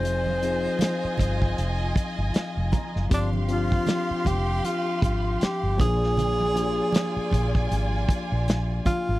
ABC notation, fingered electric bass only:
X:1
M:4/4
L:1/16
Q:"Swing 16ths" 1/4=78
K:Bbmix
V:1 name="Fingered electric bass" clef=bass
F,,,4 z2 G,,,2 F,,,2 z G,,, z F,,, z ^F,,, | G,,,4 z2 F,,,2 z2 A,,,2 z G,,, B,,,2- | B,,,4 z2 B,,,2 A,,,2 z B,,,3 z A,,, |]